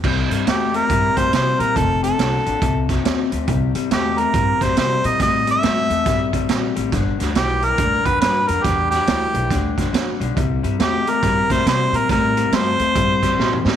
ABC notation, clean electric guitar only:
X:1
M:4/4
L:1/8
Q:"Swing" 1/4=139
K:Cmix
V:1 name="Clean electric guitar" clef=bass
[C,G,] [C,G,] [C,A,] [C,A,] [C,G,] [C,G,] [C,G,] [C,G,] | [F,,C,] [F,,C,] [F,,D,] [F,,D,] [F,,C,] [F,,C,] [F,,C,] [F,,C,] | [C,G,] [C,G,] [C,A,] [C,A,] [C,G,] [C,G,] [C,G,] [C,G,] | [C,G,] [C,G,] [C,A,] [C,A,] [C,G,] [C,G,] [C,G,] [C,G,] |
[G,,D,] [G,,D,] [G,,E,] [G,,E,] [G,,D,] [G,,D,] [G,,D,] [G,,D,] | [G,,D,] [G,,D,] [G,,E,] [G,,E,] [G,,D,] [G,,D,] [G,,D,] [G,,D,] | [C,G,] [C,G,] [C,A,] [C,A,] [C,G,] [C,G,] [C,G,] [C,G,] | [C,G,] [C,G,] [C,A,] [C,A,] [C,G,] [C,G,] [C,G,] [C,G,] |]